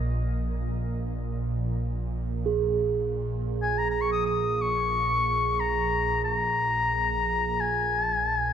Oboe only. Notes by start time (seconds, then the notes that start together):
3.63 G#5
3.78 A#5
3.91 A#5
4.01 C#6
4.12 D#6
4.26 D#6
4.62 C#6
5.60 A#5
6.24 A#5
7.61 G#5
8.02 A5
8.14 G#5